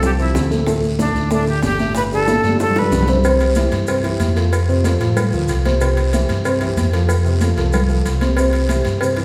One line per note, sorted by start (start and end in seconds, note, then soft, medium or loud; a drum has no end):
0.00 0.31 C2 medium
0.00 0.13 C3 medium
0.00 0.13 C4 medium
0.00 0.13 F4 medium
0.00 high bongo medium
0.00 high conga soft
0.00 low conga medium
0.00 long guiro medium
0.00 maracas medium
0.06 0.12 G4 medium
0.18 0.45 C3 medium
0.18 0.45 F3 medium
0.18 0.45 C4 medium
0.18 0.49 E4 medium
0.18 high bongo soft
0.18 high conga soft
0.18 maracas soft
0.34 1.09 D2 medium
0.34 high bongo medium
0.34 low bongo medium
0.34 high conga soft
0.34 short guiro medium
0.34 maracas medium
0.50 0.64 A2 medium
0.50 0.64 A3 medium
0.50 0.64 A4 medium
0.50 high bongo soft
0.50 high conga medium
0.50 short guiro medium
0.50 maracas soft
0.67 0.93 A2 medium
0.67 0.93 A3 medium
0.67 0.94 A4 medium
0.67 high bongo medium
0.67 long guiro medium
0.67 maracas medium
0.83 high conga soft
0.83 maracas soft
0.99 1.25 A2 medium
0.99 1.25 A3 medium
0.99 1.29 D4 medium
0.99 1.26 A4 medium
0.99 high bongo medium
0.99 high conga loud
0.99 short guiro medium
0.99 maracas medium
1.15 1.60 D2 medium
1.15 high conga soft
1.15 short guiro medium
1.15 maracas soft
1.31 1.44 A2 medium
1.31 1.44 A3 medium
1.31 1.47 D4 medium
1.31 1.45 A4 medium
1.31 high bongo medium
1.31 long guiro medium
1.31 maracas medium
1.47 1.74 D3 medium
1.47 1.74 D4 medium
1.47 1.74 G4 medium
1.47 1.63 G4 medium
1.47 high conga soft
1.47 maracas soft
1.63 2.38 G1 medium
1.63 1.94 G4 loud
1.63 high bongo medium
1.63 low bongo medium
1.63 high conga medium
1.63 short guiro medium
1.63 maracas medium
1.79 2.06 A2 medium
1.79 2.06 A3 medium
1.79 2.06 A4 medium
1.79 high conga soft
1.79 short guiro medium
1.79 maracas soft
1.95 2.03 B4 loud
1.95 high bongo medium
1.95 high conga soft
1.95 long guiro medium
1.95 maracas medium
2.12 2.25 D3 medium
2.12 2.25 D4 medium
2.12 2.25 G4 medium
2.12 2.57 A4 loud
2.12 high bongo soft
2.12 high conga soft
2.12 maracas soft
2.28 2.41 A2 medium
2.28 2.41 A3 medium
2.28 2.41 A4 medium
2.28 high bongo medium
2.28 high conga loud
2.28 short guiro medium
2.28 maracas medium
2.43 2.88 G2 medium
2.43 2.70 D3 medium
2.43 2.70 D4 medium
2.43 2.70 G4 medium
2.43 short guiro medium
2.43 maracas soft
2.49 high conga medium
2.59 2.80 A4 loud
2.59 high bongo loud
2.59 long guiro medium
2.59 maracas medium
2.70 low conga medium
2.76 3.03 D3 medium
2.76 3.03 D4 medium
2.76 3.03 G4 medium
2.76 3.09 B4 medium
2.76 high bongo loud
2.76 maracas soft
2.81 low conga loud
2.91 3.66 C2 medium
2.91 low bongo medium
2.91 short guiro medium
2.91 maracas medium
3.02 low conga loud
3.07 3.21 C3 medium
3.07 3.22 C4 medium
3.07 3.22 C5 medium
3.07 low bongo medium
3.07 short guiro medium
3.07 maracas soft
3.13 low conga loud
3.24 3.51 C3 medium
3.24 3.51 C4 medium
3.24 3.51 C5 loud
3.24 cowbell loud
3.24 high conga soft
3.24 long guiro medium
3.24 maracas medium
3.40 cowbell medium
3.40 high conga soft
3.40 maracas soft
3.55 3.83 E3 medium
3.55 3.83 E4 medium
3.55 3.83 G4 medium
3.55 cowbell medium
3.55 high conga loud
3.55 short guiro medium
3.55 maracas medium
3.71 4.17 G2 medium
3.71 cowbell medium
3.71 high conga soft
3.71 short guiro medium
3.71 maracas soft
3.87 4.01 C3 medium
3.87 4.02 C4 medium
3.87 4.02 C5 medium
3.87 cowbell loud
3.87 high conga soft
3.87 long guiro medium
3.87 maracas medium
4.04 4.30 E3 medium
4.04 4.30 E4 medium
4.04 4.31 G4 medium
4.04 cowbell medium
4.04 high conga soft
4.04 maracas soft
4.20 4.95 F2 loud
4.20 cowbell medium
4.20 high conga medium
4.20 short guiro medium
4.20 maracas medium
4.36 4.63 F3 medium
4.36 4.63 F4 medium
4.36 4.63 A4 medium
4.36 cowbell medium
4.36 high conga soft
4.36 short guiro medium
4.36 maracas soft
4.52 cowbell loud
4.52 long guiro medium
4.52 maracas medium
4.68 4.82 C3 medium
4.68 4.82 C4 medium
4.68 4.82 C5 medium
4.68 high conga soft
4.68 maracas soft
4.84 4.98 F3 medium
4.84 4.98 F4 medium
4.84 4.98 A4 medium
4.84 cowbell medium
4.84 high conga loud
4.84 short guiro medium
4.84 maracas medium
5.00 5.30 A2 medium
5.00 5.27 F3 medium
5.00 5.27 F4 medium
5.00 5.28 A4 medium
5.00 cowbell medium
5.00 high conga soft
5.00 short guiro medium
5.00 maracas soft
5.17 cowbell loud
5.17 high conga soft
5.17 low conga medium
5.17 long guiro medium
5.17 maracas medium
5.33 5.48 D2 medium
5.33 5.59 F3 medium
5.33 5.59 F4 medium
5.33 5.60 A4 medium
5.33 high conga soft
5.33 maracas soft
5.48 6.23 C2 loud
5.48 cowbell medium
5.48 high conga soft
5.48 short guiro medium
5.48 maracas medium
5.65 5.78 C3 medium
5.65 5.78 C4 medium
5.65 5.79 C5 medium
5.65 cowbell medium
5.65 high conga medium
5.65 short guiro medium
5.65 maracas soft
5.81 6.08 C3 medium
5.81 6.08 C4 medium
5.81 6.08 C5 loud
5.81 cowbell loud
5.81 high conga soft
5.81 long guiro medium
5.81 maracas medium
5.97 cowbell medium
5.97 high conga soft
5.97 maracas soft
6.13 6.39 E3 medium
6.13 6.40 E4 medium
6.13 6.40 G4 medium
6.13 cowbell medium
6.13 high conga loud
6.13 short guiro medium
6.13 maracas medium
6.29 6.74 G2 medium
6.29 cowbell medium
6.29 high conga soft
6.29 short guiro medium
6.29 maracas soft
6.45 6.58 C3 medium
6.45 6.59 C4 loud
6.45 6.59 C5 loud
6.45 cowbell loud
6.45 high conga soft
6.45 long guiro medium
6.45 maracas medium
6.61 6.87 E3 medium
6.61 6.88 E4 medium
6.61 6.88 G4 medium
6.61 cowbell medium
6.61 high conga soft
6.61 maracas soft
6.77 7.51 F2 loud
6.77 cowbell medium
6.77 high conga medium
6.77 short guiro medium
6.77 maracas medium
6.93 7.19 F3 medium
6.93 7.19 F4 medium
6.93 7.20 A4 medium
6.93 cowbell medium
6.93 high conga soft
6.93 short guiro medium
6.93 maracas soft
7.09 cowbell loud
7.09 high conga soft
7.09 long guiro medium
7.09 maracas medium
7.25 7.38 C3 loud
7.25 7.38 C4 medium
7.25 7.38 C5 medium
7.25 high conga soft
7.25 maracas soft
7.41 7.55 F3 medium
7.41 7.55 F4 medium
7.41 7.55 A4 medium
7.41 cowbell medium
7.41 high conga loud
7.41 short guiro medium
7.41 maracas medium
7.57 8.02 C2 medium
7.57 7.84 F3 medium
7.57 7.84 F4 medium
7.57 7.84 A4 medium
7.57 cowbell medium
7.57 high conga soft
7.57 short guiro medium
7.57 maracas soft
7.73 cowbell loud
7.73 high conga soft
7.73 low conga medium
7.73 long guiro medium
7.73 maracas medium
7.89 8.15 F3 medium
7.89 8.16 F4 medium
7.89 8.16 A4 medium
7.89 high conga soft
7.89 maracas soft
8.05 8.80 C2 loud
8.05 cowbell medium
8.05 high conga soft
8.05 short guiro medium
8.05 maracas medium
8.21 8.34 C3 medium
8.21 8.35 C4 medium
8.21 8.35 C5 medium
8.21 cowbell medium
8.21 high conga medium
8.21 short guiro medium
8.21 maracas soft
8.37 8.64 C3 medium
8.37 8.64 C4 medium
8.37 8.65 C5 medium
8.37 cowbell loud
8.37 high conga soft
8.37 long guiro medium
8.37 maracas medium
8.53 cowbell medium
8.53 high conga soft
8.53 maracas soft
8.69 8.96 E3 medium
8.69 8.96 E4 medium
8.69 8.96 G4 medium
8.69 cowbell medium
8.69 high conga loud
8.69 short guiro medium
8.69 maracas medium
8.85 9.25 G2 loud
8.85 cowbell medium
8.85 high conga soft
8.85 short guiro medium
8.85 maracas soft
9.01 9.15 C3 medium
9.01 9.15 C4 medium
9.01 9.15 C5 medium
9.01 cowbell loud
9.01 high conga soft
9.01 long guiro medium
9.01 maracas medium
9.17 9.25 E3 medium
9.17 9.25 E4 medium
9.17 9.25 G4 medium
9.17 cowbell medium
9.17 high conga soft
9.17 maracas soft